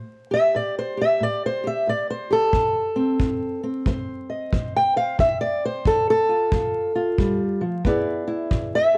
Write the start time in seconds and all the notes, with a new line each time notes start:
Already playing: A2 C5
0.31 G4 E5
0.55 A2 D5
0.79 C5
0.97 G4
1.01 E5
1.20 A2 D5
1.46 C5
1.64 G4 E5
1.87 A2 D5
2.10 C5
2.31 G4 A4
2.53 F3, kick
2.96 C4
3.20 F3, kick
3.63 C4
3.86 F3 C5, kick
4.30 D#5
4.53 F3 C5, kick
4.76 G5
4.96 C5 F5
5.18 F3 E5, kick
5.41 D5
5.65 C5
5.85 F3 A4, kick
6.10 A4
6.29 F4
6.52 F3 F4, kick
6.95 F4
7.18 G3, kick
7.61 F3
7.85 E3 B3 E4 G#4 D5, kick
8.28 E4
8.51 E3, kick
8.75 E5
8.94 G#4